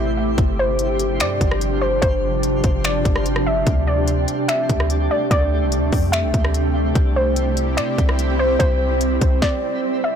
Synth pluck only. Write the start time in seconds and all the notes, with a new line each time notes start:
Already playing: E5
0.59 C5
1.21 D5
1.81 C5
2.02 C5
2.85 D5
3.46 E5
3.87 D5
4.48 E5
5.11 D5
5.31 D5
6.12 E5
7.16 C5
7.77 D5
8.39 C5
8.59 C5
9.42 D5
10.04 E5